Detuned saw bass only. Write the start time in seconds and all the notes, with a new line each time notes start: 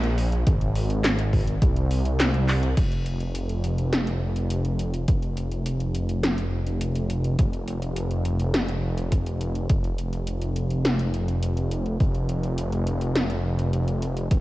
Already playing: A#1
0.47 G#1
1.62 C2
2.77 F1
5.08 F1
7.39 F1
9.70 F1
12.00 F1
14.31 F1